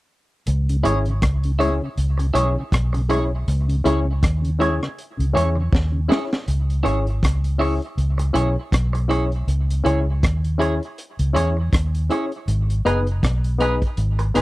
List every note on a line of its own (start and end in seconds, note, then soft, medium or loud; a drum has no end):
0.47 0.83 C#2 loud
0.47 closed hi-hat medium
0.69 0.76 C#3 medium
0.69 closed hi-hat medium
0.83 1.20 G#1 medium
0.83 0.94 G#3 medium
0.83 1.05 C#4 medium
0.83 0.95 C#4 medium
0.83 0.97 E4 medium
0.83 1.05 E4 medium
0.83 0.95 E4 medium
0.83 1.05 G#4 medium
0.83 0.98 G#4 medium
0.83 1.05 C#5 loud
0.83 0.99 C#5 medium
0.83 closed hi-hat medium
1.05 1.14 C#3 soft
1.05 closed hi-hat soft
1.22 1.78 C#2 medium
1.22 kick loud
1.22 cross-stick loud
1.22 closed hi-hat medium
1.43 1.52 C#3 medium
1.43 closed hi-hat medium
1.59 1.70 G#3 medium
1.59 1.80 C#4 medium
1.59 1.70 C#4 medium
1.59 1.73 E4 medium
1.59 1.80 E4 medium
1.59 1.70 E4 medium
1.59 1.80 G#4 medium
1.59 1.73 G#4 medium
1.59 1.80 C#5 medium
1.59 1.73 C#5 medium
1.59 closed hi-hat medium
1.82 1.89 C#3 medium
1.97 2.33 C#2 loud
1.97 closed hi-hat medium
2.18 2.27 C#3 medium
2.18 muted clean electric guitar stroke soft
2.18 closed hi-hat medium
2.34 2.55 B1 medium
2.34 2.44 G#3 medium
2.34 2.55 C#4 medium
2.34 2.45 C#4 medium
2.34 2.47 E4 medium
2.34 2.55 E4 medium
2.34 2.45 E4 medium
2.34 2.48 G#4 loud
2.34 2.55 G#4 medium
2.34 2.56 C#5 loud
2.34 2.49 C#5 medium
2.34 closed hi-hat medium
2.56 2.64 C#3 medium
2.72 3.44 B1 medium
2.72 kick loud
2.72 cross-stick loud
2.72 closed hi-hat medium
2.93 3.01 C#3 medium
2.93 muted clean electric guitar stroke soft
2.93 closed hi-hat medium
3.08 3.19 G#3 medium
3.08 3.19 C#4 medium
3.08 3.30 C#4 medium
3.08 3.30 E4 medium
3.08 3.20 E4 medium
3.08 3.23 E4 medium
3.08 3.31 G#4 medium
3.08 3.24 G#4 medium
3.08 3.31 C#5 medium
3.08 3.24 C#5 medium
3.08 closed hi-hat medium
3.48 3.83 C#2 medium
3.48 closed hi-hat medium
3.68 3.76 C#3 medium
3.68 closed hi-hat medium
3.84 4.21 C#2 medium
3.84 3.95 G#3 medium
3.84 4.05 C#4 loud
3.84 3.95 C#4 medium
3.84 4.05 E4 medium
3.84 3.95 E4 medium
3.84 3.98 E4 medium
3.84 4.06 G#4 medium
3.84 3.99 G#4 medium
3.84 4.06 C#5 medium
3.84 3.99 C#5 medium
3.84 closed hi-hat medium
4.05 4.13 C#3 medium
4.23 4.78 D#2 medium
4.23 kick loud
4.23 cross-stick loud
4.23 closed hi-hat medium
4.42 4.50 C#3 medium
4.42 closed hi-hat medium
4.59 4.70 G#3 medium
4.59 4.80 C#4 medium
4.59 4.70 C#4 medium
4.59 4.80 E4 medium
4.59 4.70 E4 medium
4.59 4.73 E4 medium
4.59 4.80 G#4 medium
4.59 4.74 G#4 medium
4.59 4.81 C#5 loud
4.59 4.74 C#5 loud
4.59 closed hi-hat medium
4.81 4.89 C#3 medium
4.81 cross-stick medium
4.98 closed hi-hat medium
5.17 5.34 C#2 medium
5.17 5.26 C#3 medium
5.17 closed hi-hat medium
5.33 5.71 E2 medium
5.33 5.44 G#3 medium
5.33 5.44 C#4 medium
5.33 5.55 C#4 medium
5.33 5.44 E4 medium
5.33 5.55 E4 medium
5.33 5.48 E4 medium
5.33 5.55 G#4 medium
5.33 5.49 G#4 medium
5.33 5.56 C#5 loud
5.33 5.49 C#5 medium
5.33 closed hi-hat medium
5.55 5.63 C#3 medium
5.55 muted clean electric guitar stroke medium
5.73 6.08 D#2 medium
5.73 kick loud
5.73 snare medium
5.92 6.00 C#3 medium
6.08 6.19 G#3 medium
6.08 6.30 C#4 medium
6.08 6.20 C#4 medium
6.08 6.30 E4 medium
6.08 6.23 E4 medium
6.08 6.20 E4 medium
6.08 6.30 G#4 medium
6.08 6.23 G#4 medium
6.08 6.30 C#5 medium
6.08 6.24 C#5 medium
6.08 snare medium
6.33 snare medium
6.48 6.83 C#2 loud
6.48 closed hi-hat medium
6.70 closed hi-hat soft
6.83 7.21 G#1 medium
6.83 7.05 C#4 medium
6.83 6.97 E4 medium
6.83 7.05 E4 medium
6.83 7.05 G#4 medium
6.83 6.98 G#4 medium
6.83 7.05 C#5 loud
6.83 6.98 C#5 medium
6.83 closed hi-hat medium
7.07 closed hi-hat soft
7.23 7.79 C#2 medium
7.23 kick loud
7.23 cross-stick loud
7.23 closed hi-hat medium
7.44 closed hi-hat medium
7.58 7.80 C#4 medium
7.58 7.80 E4 medium
7.58 7.73 E4 medium
7.58 7.80 G#4 medium
7.58 7.74 G#4 medium
7.58 7.81 C#5 loud
7.58 7.74 C#5 medium
7.58 open hi-hat soft
7.82 closed hi-hat soft
7.97 8.33 C#2 loud
7.97 closed hi-hat medium
8.18 muted clean electric guitar stroke soft
8.18 closed hi-hat medium
8.33 8.55 B1 medium
8.33 8.55 C#4 medium
8.33 8.55 E4 medium
8.33 8.48 E4 medium
8.33 8.55 G#4 medium
8.33 8.48 G#4 medium
8.33 8.55 C#5 medium
8.33 8.49 C#5 medium
8.33 closed hi-hat medium
8.72 9.44 B1 loud
8.72 kick loud
8.72 cross-stick loud
8.72 closed hi-hat medium
8.93 muted clean electric guitar stroke soft
8.93 closed hi-hat medium
9.08 9.30 C#4 medium
9.08 9.30 E4 medium
9.08 9.23 E4 medium
9.08 9.30 G#4 medium
9.08 9.24 G#4 medium
9.08 9.30 C#5 medium
9.08 9.24 C#5 medium
9.08 closed hi-hat medium
9.32 closed hi-hat soft
9.47 9.83 C#2 medium
9.47 closed hi-hat medium
9.70 closed hi-hat medium
9.84 10.21 C#2 medium
9.84 10.05 C#4 medium
9.84 10.05 E4 medium
9.84 9.98 E4 medium
9.84 10.05 G#4 medium
9.84 9.99 G#4 medium
9.84 10.06 C#5 loud
9.84 9.99 C#5 medium
9.84 closed hi-hat medium
10.23 10.79 D#2 medium
10.23 kick loud
10.23 cross-stick loud
10.23 closed hi-hat medium
10.44 closed hi-hat soft
10.58 10.80 C#4 medium
10.58 10.80 E4 medium
10.58 10.73 E4 medium
10.58 10.80 G#4 medium
10.58 10.74 G#4 medium
10.58 10.80 C#5 medium
10.58 10.74 C#5 medium
10.58 closed hi-hat medium
10.83 closed hi-hat soft
10.98 closed hi-hat medium
11.19 11.35 C#2 medium
11.19 closed hi-hat medium
11.33 11.71 E2 medium
11.33 11.55 C#4 medium
11.33 11.55 E4 medium
11.33 11.48 E4 medium
11.33 11.55 G#4 medium
11.33 11.49 G#4 medium
11.33 11.56 C#5 loud
11.33 11.49 C#5 loud
11.33 closed hi-hat medium
11.57 muted clean electric guitar stroke soft
11.73 12.08 D#2 medium
11.73 kick loud
11.73 cross-stick loud
11.73 closed hi-hat medium
11.95 closed hi-hat medium
12.10 12.31 C#4 medium
12.10 12.31 E4 medium
12.10 12.24 E4 medium
12.10 12.31 G#4 medium
12.10 12.24 G#4 medium
12.10 12.31 C#5 medium
12.10 12.25 C#5 medium
12.10 closed hi-hat medium
12.32 closed hi-hat soft
12.48 12.83 G#1 loud
12.48 closed hi-hat medium
12.70 closed hi-hat medium
12.85 13.21 F#1 medium
12.85 13.06 B3 medium
12.85 13.06 D#4 medium
12.85 12.99 D#4 medium
12.85 13.06 G#4 medium
12.85 12.99 G#4 medium
12.85 13.06 B4 loud
12.85 12.99 B4 loud
12.85 closed hi-hat medium
13.07 closed hi-hat soft
13.23 13.79 B1 medium
13.23 kick loud
13.23 cross-stick loud
13.23 closed hi-hat medium
13.44 closed hi-hat medium
13.59 13.80 B3 medium
13.59 13.80 D#4 medium
13.59 13.74 D#4 medium
13.59 13.81 G#4 medium
13.59 13.74 G#4 medium
13.59 13.81 B4 medium
13.59 13.74 B4 medium
13.59 closed hi-hat medium
13.82 kick medium
13.82 closed hi-hat soft
13.97 14.33 G#1 loud
13.97 closed hi-hat medium
14.19 muted clean electric guitar stroke soft
14.19 closed hi-hat soft
14.34 14.42 F#1 medium
14.34 14.42 B3 medium
14.34 14.42 D#4 medium
14.34 14.42 G#4 medium
14.34 14.42 B4 loud
14.34 14.42 B4 medium
14.34 cross-stick medium
14.34 closed hi-hat medium